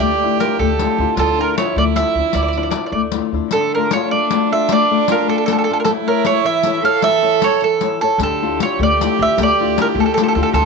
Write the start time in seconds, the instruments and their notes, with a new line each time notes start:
Already playing: nylon-string guitar D4 E4 F4, violin G4
0.00 upright bass D2, nylon-string guitar A3, mandolin D5, riq
0.23 nylon-string guitar D4 E4 F4
0.40 nylon-string guitar D4 E4 F4, mandolin A#4, riq
0.59 upright bass D2, nylon-string guitar A3, mandolin A4
0.79 nylon-string guitar D4 E4 F4, riq
0.98 upright bass D2, nylon-string guitar D4 E4 F4
1.17 upright bass D2, nylon-string guitar D3, violin F4, mandolin A4, riq
1.39 nylon-string guitar D4 E4 F4, mandolin A#4
1.58 nylon-string guitar F3 E4, violin E4, mandolin C#5, riq
1.76 upright bass D2, nylon-string guitar A3, mandolin D5
1.96 nylon-string guitar F3 D4 E4, mandolin E5, riq
2.15 upright bass D2
2.19 nylon-string guitar F3 D4 E4
2.33 upright bass D2, nylon-string guitar F3, mandolin D5, riq
2.43 mandolin D5
2.48 mandolin D5
2.53 nylon-string guitar D4, riq
2.57 nylon-string guitar F3 E4, mandolin D5
2.63 mandolin D5
2.70 mandolin D5, riq
2.76 nylon-string guitar F3 D4 E4, mandolin D5
2.86 mandolin D5
2.92 upright bass D2, nylon-string guitar A3, mandolin D5
3.12 nylon-string guitar D4 E4 F4, riq
3.32 upright bass D2, nylon-string guitar D4 E4 F4
3.50 violin D4, mandolin A4, riq
3.54 nylon-string guitar D3
3.75 nylon-string guitar A3 D4 F4, mandolin A#4
3.91 nylon-string guitar A3 D4 F4, mandolin C#5, riq
4.11 nylon-string guitar A3, mandolin D5
4.30 nylon-string guitar A3 D4 F4, riq
4.52 nylon-string guitar A3 D4 F4, mandolin E5
4.69 nylon-string guitar A3, mandolin D5, riq
4.91 nylon-string guitar A3 D4 F4
5.08 nylon-string guitar A3 D4 F4, mandolin A#4, riq
5.28 nylon-string guitar A3, mandolin A4
5.38 mandolin A4
5.46 nylon-string guitar A3, mandolin A4, riq
5.50 nylon-string guitar D4 F4, mandolin A4
5.58 mandolin A4
5.64 mandolin A4
5.69 nylon-string guitar A3 D4 F4
5.73 mandolin A4
5.80 mandolin A#4
5.85 nylon-string guitar A3, violin E4, mandolin A4, riq
6.07 nylon-string guitar E4 A4 C#5, mandolin A#4
6.24 nylon-string guitar E4 A4 C#5, mandolin C#5, riq
6.44 nylon-string guitar E3, mandolin E5
6.63 nylon-string guitar E4 A4 C#5, riq
6.83 nylon-string guitar E4 A4 C#5, violin A4, mandolin F5
7.02 nylon-string guitar E3, mandolin E5, riq
7.22 nylon-string guitar E4 A4 C#5
7.42 nylon-string guitar E4 A4 C#5, mandolin C#5, riq
7.61 nylon-string guitar E3, mandolin A4, riq
7.81 nylon-string guitar E4 A4 C#5, riq
8.01 nylon-string guitar E4 A4 C#5, mandolin A4, riq
8.18 upright bass D2, nylon-string guitar D3, violin G4, riq
8.23 mandolin A4
8.42 nylon-string guitar D4 E4 F4
8.60 nylon-string guitar D4 E4 F4, mandolin C#5, riq
8.79 upright bass D2, nylon-string guitar A3
8.83 mandolin D5
9.01 nylon-string guitar D4 E4 F4, riq
9.19 upright bass D2, nylon-string guitar D4 E4 F4, mandolin E5
9.38 upright bass D2, nylon-string guitar A3, riq
9.43 mandolin D5
9.60 nylon-string guitar D4 E4 F4
9.78 nylon-string guitar D4 E4 F4, mandolin A#4, riq
9.95 upright bass D2, nylon-string guitar A3
10.00 mandolin A4
10.06 mandolin A4
10.14 mandolin A4, riq
10.19 nylon-string guitar D4 E4 F4
10.23 mandolin A4
10.28 mandolin A4
10.35 upright bass D2, nylon-string guitar D4 E4 F4, mandolin A4
10.43 mandolin A4
10.53 upright bass D2, nylon-string guitar D3, violin F4, mandolin A4, riq